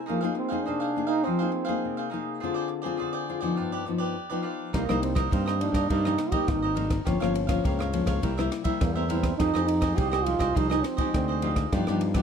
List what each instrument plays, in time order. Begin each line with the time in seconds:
0.06 nylon-string guitar F3 A#3 D#4 G#4, trombone A#3, cavaquinho D#4 G#4 C5 F5
0.21 nylon-string guitar A#3 D#4 G#4, cavaquinho G#4 C5 F5
0.35 trombone C4, muted cavaquinho stroke
0.48 nylon-string guitar A#3 D#4, cavaquinho G#4 C5 F5
0.53 nylon-string guitar G#4
0.65 nylon-string guitar C3, trombone D4, cavaquinho D#4 G#4 C5 F5
0.80 cavaquinho G#4 C5 F5
0.96 nylon-string guitar A#3 D#4 G#4
1.07 trombone D#4, cavaquinho G#4 C5 F5
1.24 nylon-string guitar F3, trombone C4, cavaquinho D#4 G#4 C5 F5
1.39 nylon-string guitar A#3 D#4 G#4, cavaquinho G#4 C5 F5
1.52 muted cavaquinho stroke
1.65 nylon-string guitar A#3, cavaquinho G#4 C5 F5
1.69 nylon-string guitar D#4 G#4
1.85 nylon-string guitar C3
1.97 cavaquinho G#4 C5 F5
2.10 nylon-string guitar A#3 D#4 G#4, cavaquinho D#4 G#4 C5 F5
2.40 nylon-string guitar D3 C4 F4, cavaquinho F4 G#4 C5 D5
2.44 nylon-string guitar G#4
2.54 cavaquinho G#4 C5 D5
2.68 muted cavaquinho stroke
2.82 nylon-string guitar C4 F4, cavaquinho G#4 C5 D5
2.86 nylon-string guitar G#4
2.97 cavaquinho F4 G#4 C5 D5
3.02 nylon-string guitar D3
3.13 cavaquinho G#4 C5 D5
3.29 nylon-string guitar C4 F4 G#4
3.41 nylon-string guitar F3 B3 D#4, cavaquinho G#4 C5 D5
3.56 nylon-string guitar G2, cavaquinho F4 G4 B4 D5
3.72 cavaquinho G4 B4 D5
3.86 nylon-string guitar F3 B3 D#4, muted cavaquinho stroke
3.98 cavaquinho G4 B4 D5
4.30 nylon-string guitar F3 B3 D#4, cavaquinho G4 B4 D5
4.43 cavaquinho F4 G4 B4 D5
4.73 fingered electric bass C2, nylon-string guitar C3 G3 A#3 D#4, trombone A#3, cavaquinho D#4 A#4 C5 D#5, kick, cross-stick, ride
4.89 fingered electric bass C2, nylon-string guitar G3 A#3 D#4, cavaquinho A#4 C5 D#5, cross-stick
5.02 trombone C4, muted cavaquinho stroke, ride
5.15 nylon-string guitar G3 A#3 D#4, cavaquinho A#4 C5 D#5, kick, cross-stick, ride
5.31 fingered electric bass G2, nylon-string guitar G2, trombone C4, cavaquinho D#4 A#4 C5 D#5, kick, ride
5.46 cavaquinho A#4 C5 D#5, cross-stick
5.61 nylon-string guitar G3 A#3 D#4, trombone D4, ride
5.73 fingered electric bass G2, cavaquinho A#4 C5 D#5, kick, cross-stick, ride
5.90 fingered electric bass G2, nylon-string guitar C3, cavaquinho D#4 A#4 C5 D#5, trombone D#4, kick, ride
6.05 nylon-string guitar G3 A#3 D#4, cavaquinho A#4 C5 D#5, cross-stick
6.18 muted cavaquinho stroke, cross-stick, ride
6.32 nylon-string guitar G3 A#3 D#4, trombone G4, cavaquinho A#4 C5 D#5, kick, ride
6.48 fingered electric bass G#1, nylon-string guitar G2, trombone D#4, kick, cross-stick, ride
6.62 cavaquinho A#4 C5 D#5
6.74 nylon-string guitar G3 A#3 D#4, cavaquinho D#4 A#4 C5 D#5, ride
6.90 kick, cross-stick, ride
7.05 fingered electric bass G1, nylon-string guitar G2 F3 A#3 C#4, cavaquinho G4 A#4 C#5 F5, kick, cross-stick, ride
7.20 fingered electric bass G1, nylon-string guitar F3 A#3 C#4, cavaquinho A#4 C#5 F5, cross-stick
7.34 muted cavaquinho stroke, ride
7.47 nylon-string guitar F3 A#3 C#4, cavaquinho A#4 C#5 F5, kick, cross-stick, ride
7.64 fingered electric bass C#2, nylon-string guitar G2, cavaquinho G4 A#4 C#5 F5, kick, ride
7.79 cavaquinho A#4 C#5 F5, cross-stick
7.93 nylon-string guitar F3 A#3 C#4, ride
8.06 fingered electric bass C#2, cavaquinho A#4 C#5 F5, kick, cross-stick, ride
8.22 fingered electric bass C2, nylon-string guitar C3 G3 A#3 E4, cavaquinho E4 A#4 C5 E5, kick, ride
8.38 nylon-string guitar G3 A#3 E4, cavaquinho A#4 C5 E5, cross-stick
8.51 muted cavaquinho stroke, cross-stick, ride
8.64 nylon-string guitar G3 A#3 E4, cavaquinho A#4 C5 E5, kick, ride
8.81 fingered electric bass E2, nylon-string guitar G2, trombone A#3, kick, cross-stick, ride
8.95 trombone C4, cavaquinho A#4 C5 E5
9.08 nylon-string guitar G3 A#3 E4, trombone C4, cavaquinho E4 A#4 C5 E5, ride
9.23 kick, cross-stick, ride
9.38 fingered electric bass F2, nylon-string guitar F3 G#3 D#4 G4, trombone D#4, cavaquinho F4 G#4 C5 D#5, kick, cross-stick, ride
9.54 fingered electric bass F2, nylon-string guitar G#3 D#4 G4, cavaquinho G#4 C5 D#5, cross-stick
9.65 trombone D#4, muted cavaquinho stroke, ride
9.81 nylon-string guitar G#3 D#4 G4, cavaquinho G#4 C5 D#5, kick, cross-stick, ride
9.96 fingered electric bass C2, nylon-string guitar C3, cavaquinho F4 G#4 C5 D#5, trombone G4, kick, ride
10.11 trombone G4, cavaquinho G#4 C5 D#5, cross-stick
10.24 nylon-string guitar G#3 D#4 G4, trombone F4, ride
10.39 fingered electric bass C2, cavaquinho G#4 C5 D#5, kick, cross-stick, ride
10.54 fingered electric bass C2, nylon-string guitar F3, trombone D#4, cavaquinho F4 G#4 C5 D#5, kick, ride
10.70 nylon-string guitar G#3 D#4 G4, trombone D#4, cavaquinho G#4 C5 D#5, cross-stick
10.83 trombone C4, muted cavaquinho stroke, cross-stick, ride
10.97 nylon-string guitar G#3 D#4 G4, cavaquinho G#4 C5 D#5, kick, ride
11.14 fingered electric bass D2, nylon-string guitar C3, trombone C4, kick, cross-stick, ride
11.28 cavaquinho G#4 C5 D#5
11.42 nylon-string guitar G#3 D#4 G4, cavaquinho F4 G#4 C5 D#5, ride
11.56 kick, cross-stick, ride
11.73 fingered electric bass G2, nylon-string guitar G2 F3 B3 D#4, cavaquinho F4 G4 B4 D5, kick, cross-stick, ride
11.87 fingered electric bass G2, nylon-string guitar F3 B3 D#4, cavaquinho G4 B4 D5, cross-stick
12.01 muted cavaquinho stroke, ride
12.14 nylon-string guitar F3 B3 D#4, cavaquinho G4 B4 D5, kick, cross-stick, ride